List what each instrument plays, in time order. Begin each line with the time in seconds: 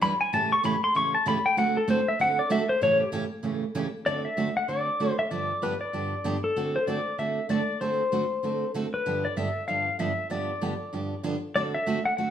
0.01 steel-string acoustic guitar E3 G3 D4 E4 B4, pedal steel guitar B5
0.21 pedal steel guitar G#5
0.33 steel-string acoustic guitar A2 C#3 E3 A3 C#4 G4, pedal steel guitar A5
0.52 pedal steel guitar C#6
0.63 steel-string acoustic guitar A2 C#3 E3 A3 C#4 G4, pedal steel guitar B5
0.84 pedal steel guitar C6
0.95 steel-string acoustic guitar A2 C#3 E3 A3 C#4 G4, pedal steel guitar C#6
1.15 pedal steel guitar A5
1.26 steel-string acoustic guitar A2 C#3 E3 A3 C#4 G4, pedal steel guitar B5
1.46 pedal steel guitar G5
1.57 steel-string acoustic guitar D3 A3 C4 F#4 A4, pedal steel guitar F#5
1.77 pedal steel guitar A4
1.88 steel-string acoustic guitar D3 A3 C4 F#4 A4, pedal steel guitar C5
2.08 pedal steel guitar E5
2.19 steel-string acoustic guitar D3 A3 C4 F#4 A4, pedal steel guitar F#5
2.39 pedal steel guitar D5
2.50 steel-string acoustic guitar D3 A3 C4 F#4 A4, pedal steel guitar E5
2.69 pedal steel guitar C5
2.81 steel-string acoustic guitar A2 C#3 E3 A3 C#4 G4, pedal steel guitar C#5
3.01 pedal steel guitar G4
3.12 steel-string acoustic guitar A2 C#3 E3 A3 C#4 G4
3.43 steel-string acoustic guitar A2 C#3 E3 A3 C#4 G4
3.75 steel-string acoustic guitar A2 C#3 E3 A3 C#4 G4
4.06 steel-string acoustic guitar D3 A3 C4 F#4 A4, pedal steel guitar D5
4.25 pedal steel guitar E5
4.37 steel-string acoustic guitar D3 A3 C4 F#4 A4
4.57 pedal steel guitar F#5
4.68 steel-string acoustic guitar D3 A3 C4 F#4 A4, pedal steel guitar D5
5.00 steel-string acoustic guitar D3 A3 C4 F#4 A4
5.19 pedal steel guitar E5
5.31 steel-string acoustic guitar G2 D3 F3 B3 D4 G4, pedal steel guitar D5
5.62 steel-string acoustic guitar G2 D3 F3 B3 D4 G4, pedal steel guitar B4
5.81 pedal steel guitar D5
5.93 steel-string acoustic guitar G2 D3 F3 B3 D4 G4
6.24 steel-string acoustic guitar G2 D3 F3 B3 D4 G4
6.44 pedal steel guitar A4
6.56 steel-string acoustic guitar D3 A3 C4 F#4 A4
6.76 pedal steel guitar C5
6.87 steel-string acoustic guitar D3 A3 C4 F#4 A4, pedal steel guitar D5
7.18 steel-string acoustic guitar D3 A3 C4 F#4 A4, pedal steel guitar E5
7.49 steel-string acoustic guitar D3 A3 C4 F#4 A4, pedal steel guitar D5
7.81 steel-string acoustic guitar D3 A3 C4 F#4 A4, pedal steel guitar C5
8.12 steel-string acoustic guitar D3 A3 C4 F#4 A4
8.43 steel-string acoustic guitar D3 A3 C4 F#4 A4
8.74 steel-string acoustic guitar D3 A3 C4 F#4 A4
8.94 pedal steel guitar B4
9.06 steel-string acoustic guitar G2 D3 F3 B3 D4 G4
9.25 pedal steel guitar D5
9.36 steel-string acoustic guitar G2 D3 F3 B3 D4 G4, pedal steel guitar E5
9.68 steel-string acoustic guitar G2 D3 F3 B3 D4 G4, pedal steel guitar F5
9.99 steel-string acoustic guitar G2 D3 F3 B3 D4 G4, pedal steel guitar E5
10.30 steel-string acoustic guitar G2 D3 F3 B3 D4 G4, pedal steel guitar D5
10.61 steel-string acoustic guitar G2 D3 F3 B3 D4 G4
10.93 steel-string acoustic guitar G2 D3 F3 B3 D4 G4
11.23 steel-string acoustic guitar G2 D3 F3 B3 D4 G4
11.56 steel-string acoustic guitar D3 A3 C4 F#4 A4, pedal steel guitar D5
11.74 pedal steel guitar E5
11.86 steel-string acoustic guitar D3 A3 C4 F#4 A4
12.05 pedal steel guitar F#5
12.17 steel-string acoustic guitar D3 A3 C4 F#4 A4, pedal steel guitar F#5